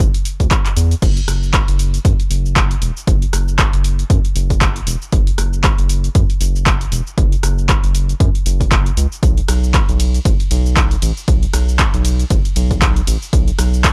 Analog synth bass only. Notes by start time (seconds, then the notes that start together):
0.40 D2
0.77 E2
1.02 F#1
1.28 F#1
1.68 F#1
2.05 F#2
2.31 F#1
2.82 E1
3.07 F#1
3.33 F#1
3.73 F#1
4.10 F#2
4.36 F#1
4.87 E1
5.13 F#1
5.38 F#1
5.79 F#1
6.15 F#2
6.41 F#1
6.92 E1
7.18 F#1
7.43 F#1
7.84 F#1
8.20 F#2
8.46 F#1
8.97 C#2
9.23 B1
9.48 B1
9.89 B1
10.25 F#1
10.51 B1
11.02 A1
11.28 B1
11.54 B1
11.94 B1
12.30 F#1
12.56 B1
13.07 A1
13.33 B1
13.59 B1